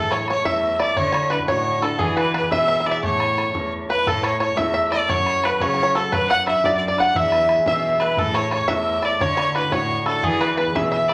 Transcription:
Already playing: cello A2, harp A3 D4 E4 F#4 B4, five-string banjo A4, fiddle A4, tin whistle A5
0.11 five-string banjo C#5, fiddle C#5, tin whistle C#6, bodhran
0.28 harp E4 A4 C#5, five-string banjo C#5, fiddle C#5, tin whistle C#6, bodhran
0.45 cello E2, harp E4 A4 C#5, five-string banjo E5, fiddle E5, tin whistle E6, bodhran
0.63 bodhran
0.76 five-string banjo D5, fiddle E5, tin whistle D6, bodhran
0.81 harp E4 A4 C#5, fiddle D5
0.96 cello D3, harp D3, five-string banjo C#5, fiddle C#5, tin whistle C#6, bodhran
1.12 five-string banjo C#5, bodhran
1.30 harp D4 E4 F#4, five-string banjo B4, fiddle B4, tin whistle B5, bodhran
1.39 bodhran
1.48 cello A2, harp D4 E4 F#4, five-string banjo C#5, fiddle C#5, tin whistle C#6, bodhran
1.65 bodhran
1.82 harp D4 E4 F#4, five-string banjo A4, fiddle A4, tin whistle A5, bodhran
1.99 harp E3, cello E3, five-string banjo G#4, fiddle G#4, tin whistle G#5, bodhran
2.17 five-string banjo B4, fiddle B4, bodhran
2.34 harp B3 E4 G#4, five-string banjo B4, fiddle B4, bodhran
2.43 bodhran
2.51 cello B2, harp B3 E4 G#4, fiddle E5, five-string banjo E5, tin whistle E6, bodhran
2.68 five-string banjo E5, bodhran
2.80 five-string banjo E5
2.85 harp B3 E4 G#4, fiddle D5, tin whistle D6, bodhran
2.91 five-string banjo E5
3.03 cello A2, harp A3, five-string banjo C#5, fiddle C#5, tin whistle C#6, bodhran
3.20 bodhran
3.37 harp E4 A4 C#5, bodhran
3.46 bodhran
3.54 cello E2, harp E4 A4 C#5, bodhran
3.72 bodhran
3.88 harp E4 A4 C#5, fiddle B4, five-string banjo B4, tin whistle B5
4.07 cello A2, harp A3, fiddle A4, five-string banjo A4, tin whistle A5, bodhran
4.23 fiddle C#5, five-string banjo C#5, tin whistle C#6, bodhran
4.40 harp E4 A4 C#5, five-string banjo C#5, fiddle C#5, tin whistle C#6, bodhran
4.50 bodhran
4.57 cello E2, harp E4 A4 C#5, five-string banjo E5, fiddle E5, tin whistle E6, bodhran
4.74 five-string banjo E5, bodhran
4.92 harp E4 A4 C#5, five-string banjo D5, fiddle D5, bodhran
5.09 cello F#2, harp F#3, five-string banjo C#5, fiddle C#5, tin whistle C#6, bodhran
5.22 tin whistle C#6
5.26 bodhran
5.33 tin whistle C#6
5.43 harp F#4 A4 C#5, fiddle B4, five-string banjo B4, tin whistle B5, bodhran
5.52 bodhran
5.60 cello C#3, harp F#4 A4 C#5, five-string banjo C#5, fiddle C#5, tin whistle C#6, bodhran
5.74 five-string banjo C#5
5.78 bodhran
5.83 five-string banjo C#5
5.95 harp F#4 A4 C#5, five-string banjo A4, fiddle A4, tin whistle A5, bodhran
6.12 cello F#2, harp F#3, five-string banjo B4, fiddle B4, tin whistle B5, bodhran
6.29 fiddle F#5, five-string banjo F#5, tin whistle F#6, bodhran
6.46 harp D4 F#4 B4, five-string banjo E5, fiddle E5, tin whistle E6, bodhran
6.56 bodhran
6.63 cello F#2, harp D4 F#4 B4, fiddle D5, five-string banjo D5, tin whistle D6, bodhran
6.77 fiddle D5
6.82 bodhran
6.87 five-string banjo D5, fiddle D5, tin whistle D6
6.97 harp D4 F#4 B4, fiddle F#5, five-string banjo F#5, tin whistle F#6, bodhran
7.14 cello E2, harp E3, five-string banjo E5, fiddle E5, tin whistle E6, bodhran
7.32 bodhran
7.47 harp E4 G#4 B4, bodhran
7.58 bodhran
7.65 cello B2, harp E4 G#4 B4, fiddle E5, five-string banjo E5, tin whistle E6, bodhran
7.83 bodhran
8.00 harp E4 G#4 B4, fiddle B4, five-string banjo B4, tin whistle B5, bodhran
8.17 cello A2, harp A3, fiddle A4, five-string banjo A4, tin whistle A5, bodhran
8.34 five-string banjo C#5, fiddle C#5, tin whistle C#6, bodhran
8.51 harp E4 A4 C#5, five-string banjo C#5, fiddle C#5, tin whistle C#6, bodhran
8.60 bodhran
8.68 cello E2, harp E4 A4 C#5, five-string banjo E5, fiddle E5, tin whistle F#6, bodhran
8.73 tin whistle E6
8.86 bodhran
9.02 harp E4 A4 C#5, five-string banjo D5, fiddle D5, tin whistle D6, bodhran
9.20 cello D3, harp D3, five-string banjo C#5, fiddle C#5, tin whistle C#6, bodhran
9.32 tin whistle C#6
9.37 five-string banjo C#5, bodhran
9.46 tin whistle C#6
9.55 harp D4 E4 F#4, five-string banjo B4, fiddle B4, tin whistle B5, bodhran
9.64 bodhran
9.72 cello A2, harp D4 E4 F#4, five-string banjo C#5, fiddle C#5, tin whistle C#6, bodhran
9.89 bodhran
10.06 harp D4 E4 F#4, five-string banjo A4, fiddle A4, bodhran
10.23 harp E3, cello E3, five-string banjo G#4, fiddle G#4, tin whistle G#5, bodhran
10.41 five-string banjo B4, fiddle B4, bodhran
10.57 harp B3 E4 G#4, five-string banjo B4, fiddle B4, tin whistle B5, bodhran
10.67 bodhran
10.74 cello B2, harp B3 E4 G#4, fiddle E5, five-string banjo E5, tin whistle E6, bodhran
10.92 five-string banjo E5, fiddle E5, tin whistle E6, bodhran
11.08 harp B3 E4 G#4, fiddle D5, five-string banjo D5, bodhran

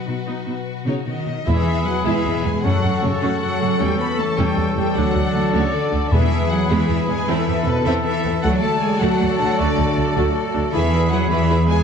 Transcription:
Already playing: harp B2 F#3 B3 D#4, violin section F#4 B4
0.06 cello section B2, viola section D#4
0.26 cello section B2, viola section D#4
0.45 cello section B2, viola section D#4
0.85 cello section B2 C#3, french horn section C#3, viola section D#4, violin section C#5
1.05 cello section B2 D#3, french horn section D#3, viola section D#4, violin section D#5
1.26 cello section B2, viola section D#4
1.46 harp E2, double bass section E2, timpani E2, french horn section E3, cello section E3, trombone section E3 B3, viola section G#3 E4, trumpet section G#4, violin section G#4 B4 E5, clarinet G#4, flute B5
1.57 harp G#3
1.66 harp G#4
1.76 harp B3
1.85 cello section F#3, french horn section F#3, harp B4, violin section F#5
1.96 harp G#5
2.05 double bass section E2, french horn section E3, cello section E3, viola section G#3 E4, harp G#4, violin section E5
2.16 harp B3
2.25 double bass section E2, viola section G#3, harp G#3
2.35 harp B2
2.44 double bass section E2, viola section G#3 B3, french horn section G#3, cello section G#3, harp G#3, violin section G#5
2.54 harp B2
2.63 harp F#2, double bass section F#2, trombone section C#3 C#4, french horn section F#3, cello section F#3, viola section A3 C#4, violin section F#4 A4 F#5, trumpet section A4, clarinet A4, flute C#6
2.74 harp A3
2.83 double bass section F#2, viola section F#3 A3, harp C#5
2.93 harp A4
3.01 double bass section F#2, french horn section C#3, cello section C#3, viola section A3, violin section C#5, harp F#5
3.13 harp C#6
3.21 double bass section F#2, french horn section F#3, cello section F#3, viola section A3 C#4, harp A4, violin section F#5
3.32 harp C#5
3.41 french horn section F#3, cello section F#3, harp F#4, violin section F#5
3.51 harp A3
3.60 double bass section F#2, harp C#3, viola section A3
3.71 harp A3
3.78 double bass section E2, harp E3, trombone section E3, french horn section G3, cello section G3, viola section A3 C#4, violin section A4 G5
3.90 harp A3
3.99 french horn section B3, cello section B3, harp C#5, violin section B5
4.09 harp A4
4.18 cello section A3, french horn section A3, harp A5, violin section A5
4.29 harp C#6
4.37 double bass section E2, french horn section G3, cello section G3, viola section A3 C#4, harp A4, violin section G5
4.48 harp C#5
4.57 double bass section E2, viola section G3 A3, harp A4
4.66 harp A3
4.76 double bass section E2, french horn section G3, cello section G3, viola section A3, harp E4, violin section G5
4.86 harp A3
4.94 double bass section D2, harp D3, trombone section D3 D4, french horn section F#3, cello section F#3, viola section A3 D4, violin section F#4 F#5, flute D6
5.05 harp A3
5.14 double bass section D2, viola section F#3 A3, harp D5
5.34 double bass section D2, viola section A3, harp A5
5.44 harp D6
5.52 double bass section D2, french horn section C#3, cello section C#3, viola section A3 D4, harp A4, violin section C#5
5.63 harp D5
5.72 french horn section D3, cello section D3, harp A4, violin section D5
5.82 harp A3
5.92 double bass section D2, viola section A3, harp D4
6.02 harp A3
6.11 timpani E2, double bass section E2, harp E3, french horn section E3, cello section E3, trombone section E3 B3, viola section G#3 B3, violin section G#4 B4 E5, clarinet G#4, trumpet section G#4, flute B5
6.21 harp E4
6.31 harp G#4
6.40 harp E5
6.50 french horn section F#3, cello section F#3, violin section F#5, harp B5
6.60 harp G#5
6.69 double bass section E2, french horn section E3, cello section E3, viola section G#3 B3, harp E5, violin section E5
6.79 harp G#4
6.89 double bass section E2, viola section E3 G#3, harp B4
6.99 harp E4
7.08 double bass section E2, viola section G#3, cello section G#3, harp G#3, french horn section G#3, violin section G#5
7.18 harp E4
7.27 double bass section E2, cello section E3, french horn section E3, harp E3, viola section C4 E4, clarinet A4, trumpet section A4, violin section A4 E5
7.38 harp E4
7.47 double bass section E2, viola section B3 C4, harp A4
7.57 harp E5
7.66 double bass section E2, cello section B2, french horn section B2, viola section C4, violin section B4, harp B5
7.76 harp A5
7.85 double bass section E2, french horn section E3, cello section E3, viola section C4 E4, violin section E5
7.95 harp A4
8.05 french horn section E3, cello section E3, harp B4, violin section E5
8.15 harp E4
8.24 double bass section E2, harp A3, viola section C4
8.34 harp E4
8.42 double bass section D2, harp D3, cello section F#3, trombone section F#3 A3, french horn section F#3, viola section A3 F#4, clarinet F#4, violin section D5 F#5, flute A5
8.53 harp A3
8.61 cello section A3, french horn section A3, harp D5, violin section A5
8.73 harp A4
8.80 cello section G#3, french horn section G#3, harp F#5, violin section G#5
8.92 harp D6
9.00 double bass section D2, cello section F#3, french horn section F#3, viola section A3 F#4, harp A4, violin section F#5
9.11 harp D5
9.19 double bass section D2, viola section A3, harp F#4
9.30 harp A3
9.38 double bass section D2, cello section F#3, french horn section F#3, viola section A3 D4, harp D4, violin section F#5
9.50 harp A3
9.57 double bass section D2, cello section D3, french horn section D3, viola section A3 F#4, harp D4, violin section D5
9.69 harp A3
9.77 double bass section D2, viola section A3
9.88 harp A4
9.96 double bass section D2, viola section A3 D4, harp F#5
10.07 harp D6
10.15 double bass section D2, viola section A3 F#4, harp A4
10.36 harp F#4
10.45 harp A3
10.53 double bass section D2, viola section A3 D4, harp D4
10.64 harp A3
10.72 double bass section E2, viola section E3 E4, french horn section E3, harp E3, cello section E3, trombone section E3 B3, trumpet section G#4, clarinet G#4, violin section G#4 B4 E5, flute B5
10.92 viola section E3 E4, harp G#4, violin section G#4 B4
11.11 viola section E3 E4, french horn section F#3, cello section F#3, violin section G#4 B4 F#5
11.22 harp G#5
11.30 double bass section E2, viola section E3 E4, cello section E3, french horn section E3, violin section G#4 B4 E5, harp E5
11.41 harp G#4
11.49 viola section E3 E4, violin section G#4 B4, harp B4
11.60 harp E4
11.68 viola section E3 E4, cello section G#3, french horn section G#3, harp G#3, violin section G#4 B4 G#5

